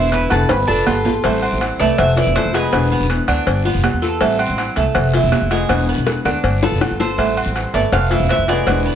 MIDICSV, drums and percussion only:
0, 0, Header, 1, 2, 480
1, 0, Start_track
1, 0, Key_signature, 0, "minor"
1, 0, Tempo, 371287
1, 1608, Time_signature, 4, 2, 24, 8
1, 11572, End_track
2, 0, Start_track
2, 0, Title_t, "Drums"
2, 154, Note_on_c, 9, 68, 71
2, 158, Note_on_c, 9, 56, 69
2, 159, Note_on_c, 9, 73, 72
2, 284, Note_off_c, 9, 68, 0
2, 288, Note_off_c, 9, 56, 0
2, 288, Note_off_c, 9, 73, 0
2, 391, Note_on_c, 9, 68, 104
2, 399, Note_on_c, 9, 73, 71
2, 400, Note_on_c, 9, 56, 69
2, 520, Note_off_c, 9, 68, 0
2, 529, Note_off_c, 9, 73, 0
2, 530, Note_off_c, 9, 56, 0
2, 633, Note_on_c, 9, 65, 92
2, 633, Note_on_c, 9, 68, 76
2, 638, Note_on_c, 9, 56, 107
2, 644, Note_on_c, 9, 74, 72
2, 762, Note_off_c, 9, 65, 0
2, 762, Note_off_c, 9, 68, 0
2, 767, Note_off_c, 9, 56, 0
2, 773, Note_off_c, 9, 74, 0
2, 1119, Note_on_c, 9, 66, 99
2, 1119, Note_on_c, 9, 68, 117
2, 1124, Note_on_c, 9, 73, 76
2, 1125, Note_on_c, 9, 56, 70
2, 1248, Note_off_c, 9, 66, 0
2, 1248, Note_off_c, 9, 68, 0
2, 1254, Note_off_c, 9, 56, 0
2, 1254, Note_off_c, 9, 73, 0
2, 1358, Note_on_c, 9, 66, 95
2, 1365, Note_on_c, 9, 73, 72
2, 1487, Note_off_c, 9, 66, 0
2, 1494, Note_off_c, 9, 73, 0
2, 1600, Note_on_c, 9, 56, 110
2, 1601, Note_on_c, 9, 68, 79
2, 1602, Note_on_c, 9, 74, 83
2, 1730, Note_off_c, 9, 56, 0
2, 1730, Note_off_c, 9, 68, 0
2, 1731, Note_off_c, 9, 74, 0
2, 1841, Note_on_c, 9, 68, 96
2, 1970, Note_off_c, 9, 68, 0
2, 2083, Note_on_c, 9, 56, 74
2, 2083, Note_on_c, 9, 68, 93
2, 2083, Note_on_c, 9, 73, 75
2, 2212, Note_off_c, 9, 68, 0
2, 2212, Note_off_c, 9, 73, 0
2, 2213, Note_off_c, 9, 56, 0
2, 2320, Note_on_c, 9, 73, 77
2, 2327, Note_on_c, 9, 56, 65
2, 2449, Note_off_c, 9, 73, 0
2, 2457, Note_off_c, 9, 56, 0
2, 2562, Note_on_c, 9, 74, 72
2, 2566, Note_on_c, 9, 56, 103
2, 2570, Note_on_c, 9, 68, 103
2, 2691, Note_off_c, 9, 74, 0
2, 2695, Note_off_c, 9, 56, 0
2, 2699, Note_off_c, 9, 68, 0
2, 2809, Note_on_c, 9, 56, 69
2, 2939, Note_off_c, 9, 56, 0
2, 3046, Note_on_c, 9, 68, 78
2, 3047, Note_on_c, 9, 73, 75
2, 3049, Note_on_c, 9, 56, 82
2, 3176, Note_off_c, 9, 68, 0
2, 3177, Note_off_c, 9, 73, 0
2, 3178, Note_off_c, 9, 56, 0
2, 3281, Note_on_c, 9, 73, 81
2, 3289, Note_on_c, 9, 56, 70
2, 3289, Note_on_c, 9, 68, 85
2, 3410, Note_off_c, 9, 73, 0
2, 3418, Note_off_c, 9, 56, 0
2, 3419, Note_off_c, 9, 68, 0
2, 3523, Note_on_c, 9, 74, 83
2, 3526, Note_on_c, 9, 56, 117
2, 3527, Note_on_c, 9, 68, 104
2, 3653, Note_off_c, 9, 74, 0
2, 3656, Note_off_c, 9, 56, 0
2, 3656, Note_off_c, 9, 68, 0
2, 4003, Note_on_c, 9, 68, 77
2, 4003, Note_on_c, 9, 73, 76
2, 4005, Note_on_c, 9, 56, 69
2, 4132, Note_off_c, 9, 68, 0
2, 4133, Note_off_c, 9, 73, 0
2, 4134, Note_off_c, 9, 56, 0
2, 4240, Note_on_c, 9, 56, 78
2, 4240, Note_on_c, 9, 68, 109
2, 4241, Note_on_c, 9, 73, 82
2, 4369, Note_off_c, 9, 56, 0
2, 4370, Note_off_c, 9, 68, 0
2, 4370, Note_off_c, 9, 73, 0
2, 4481, Note_on_c, 9, 68, 76
2, 4482, Note_on_c, 9, 74, 68
2, 4486, Note_on_c, 9, 56, 111
2, 4610, Note_off_c, 9, 68, 0
2, 4612, Note_off_c, 9, 74, 0
2, 4615, Note_off_c, 9, 56, 0
2, 4959, Note_on_c, 9, 56, 75
2, 4961, Note_on_c, 9, 66, 84
2, 4961, Note_on_c, 9, 68, 109
2, 4964, Note_on_c, 9, 73, 77
2, 5089, Note_off_c, 9, 56, 0
2, 5091, Note_off_c, 9, 66, 0
2, 5091, Note_off_c, 9, 68, 0
2, 5093, Note_off_c, 9, 73, 0
2, 5202, Note_on_c, 9, 73, 82
2, 5331, Note_off_c, 9, 73, 0
2, 5437, Note_on_c, 9, 74, 78
2, 5438, Note_on_c, 9, 56, 114
2, 5442, Note_on_c, 9, 68, 79
2, 5566, Note_off_c, 9, 74, 0
2, 5567, Note_off_c, 9, 56, 0
2, 5571, Note_off_c, 9, 68, 0
2, 5677, Note_on_c, 9, 68, 105
2, 5806, Note_off_c, 9, 68, 0
2, 5921, Note_on_c, 9, 68, 93
2, 5921, Note_on_c, 9, 73, 70
2, 5923, Note_on_c, 9, 56, 68
2, 6050, Note_off_c, 9, 73, 0
2, 6051, Note_off_c, 9, 68, 0
2, 6052, Note_off_c, 9, 56, 0
2, 6157, Note_on_c, 9, 56, 65
2, 6163, Note_on_c, 9, 73, 73
2, 6286, Note_off_c, 9, 56, 0
2, 6292, Note_off_c, 9, 73, 0
2, 6395, Note_on_c, 9, 68, 101
2, 6398, Note_on_c, 9, 74, 77
2, 6399, Note_on_c, 9, 56, 110
2, 6524, Note_off_c, 9, 68, 0
2, 6527, Note_off_c, 9, 74, 0
2, 6528, Note_off_c, 9, 56, 0
2, 6639, Note_on_c, 9, 56, 77
2, 6768, Note_off_c, 9, 56, 0
2, 6877, Note_on_c, 9, 66, 79
2, 6877, Note_on_c, 9, 68, 85
2, 6879, Note_on_c, 9, 56, 69
2, 6879, Note_on_c, 9, 73, 79
2, 7007, Note_off_c, 9, 66, 0
2, 7007, Note_off_c, 9, 68, 0
2, 7009, Note_off_c, 9, 56, 0
2, 7009, Note_off_c, 9, 73, 0
2, 7120, Note_on_c, 9, 73, 82
2, 7121, Note_on_c, 9, 68, 91
2, 7122, Note_on_c, 9, 56, 74
2, 7249, Note_off_c, 9, 73, 0
2, 7250, Note_off_c, 9, 68, 0
2, 7252, Note_off_c, 9, 56, 0
2, 7357, Note_on_c, 9, 74, 78
2, 7359, Note_on_c, 9, 68, 112
2, 7362, Note_on_c, 9, 56, 115
2, 7486, Note_off_c, 9, 74, 0
2, 7488, Note_off_c, 9, 68, 0
2, 7491, Note_off_c, 9, 56, 0
2, 7841, Note_on_c, 9, 56, 76
2, 7841, Note_on_c, 9, 60, 88
2, 7843, Note_on_c, 9, 68, 70
2, 7849, Note_on_c, 9, 73, 79
2, 7970, Note_off_c, 9, 56, 0
2, 7970, Note_off_c, 9, 60, 0
2, 7972, Note_off_c, 9, 68, 0
2, 7978, Note_off_c, 9, 73, 0
2, 8085, Note_on_c, 9, 56, 68
2, 8085, Note_on_c, 9, 60, 75
2, 8086, Note_on_c, 9, 73, 74
2, 8088, Note_on_c, 9, 68, 107
2, 8214, Note_off_c, 9, 56, 0
2, 8214, Note_off_c, 9, 60, 0
2, 8215, Note_off_c, 9, 73, 0
2, 8217, Note_off_c, 9, 68, 0
2, 8324, Note_on_c, 9, 56, 109
2, 8325, Note_on_c, 9, 74, 76
2, 8330, Note_on_c, 9, 68, 87
2, 8453, Note_off_c, 9, 56, 0
2, 8455, Note_off_c, 9, 74, 0
2, 8459, Note_off_c, 9, 68, 0
2, 8566, Note_on_c, 9, 61, 81
2, 8696, Note_off_c, 9, 61, 0
2, 8806, Note_on_c, 9, 73, 68
2, 8808, Note_on_c, 9, 56, 71
2, 8808, Note_on_c, 9, 61, 106
2, 8809, Note_on_c, 9, 68, 124
2, 8935, Note_off_c, 9, 73, 0
2, 8937, Note_off_c, 9, 56, 0
2, 8937, Note_off_c, 9, 61, 0
2, 8939, Note_off_c, 9, 68, 0
2, 9047, Note_on_c, 9, 73, 85
2, 9048, Note_on_c, 9, 61, 83
2, 9176, Note_off_c, 9, 73, 0
2, 9177, Note_off_c, 9, 61, 0
2, 9290, Note_on_c, 9, 74, 79
2, 9291, Note_on_c, 9, 56, 112
2, 9294, Note_on_c, 9, 68, 90
2, 9419, Note_off_c, 9, 74, 0
2, 9420, Note_off_c, 9, 56, 0
2, 9423, Note_off_c, 9, 68, 0
2, 9533, Note_on_c, 9, 68, 98
2, 9662, Note_off_c, 9, 68, 0
2, 9770, Note_on_c, 9, 56, 67
2, 9772, Note_on_c, 9, 68, 90
2, 9773, Note_on_c, 9, 73, 71
2, 9899, Note_off_c, 9, 56, 0
2, 9901, Note_off_c, 9, 68, 0
2, 9902, Note_off_c, 9, 73, 0
2, 10007, Note_on_c, 9, 56, 73
2, 10009, Note_on_c, 9, 73, 75
2, 10136, Note_off_c, 9, 56, 0
2, 10138, Note_off_c, 9, 73, 0
2, 10246, Note_on_c, 9, 56, 112
2, 10246, Note_on_c, 9, 74, 71
2, 10253, Note_on_c, 9, 68, 100
2, 10375, Note_off_c, 9, 56, 0
2, 10375, Note_off_c, 9, 74, 0
2, 10383, Note_off_c, 9, 68, 0
2, 10484, Note_on_c, 9, 56, 82
2, 10614, Note_off_c, 9, 56, 0
2, 10722, Note_on_c, 9, 56, 73
2, 10732, Note_on_c, 9, 68, 78
2, 10732, Note_on_c, 9, 73, 72
2, 10852, Note_off_c, 9, 56, 0
2, 10861, Note_off_c, 9, 68, 0
2, 10861, Note_off_c, 9, 73, 0
2, 10965, Note_on_c, 9, 56, 70
2, 10973, Note_on_c, 9, 68, 95
2, 10973, Note_on_c, 9, 73, 81
2, 11095, Note_off_c, 9, 56, 0
2, 11102, Note_off_c, 9, 68, 0
2, 11102, Note_off_c, 9, 73, 0
2, 11206, Note_on_c, 9, 56, 112
2, 11211, Note_on_c, 9, 74, 87
2, 11215, Note_on_c, 9, 68, 116
2, 11336, Note_off_c, 9, 56, 0
2, 11340, Note_off_c, 9, 74, 0
2, 11344, Note_off_c, 9, 68, 0
2, 11572, End_track
0, 0, End_of_file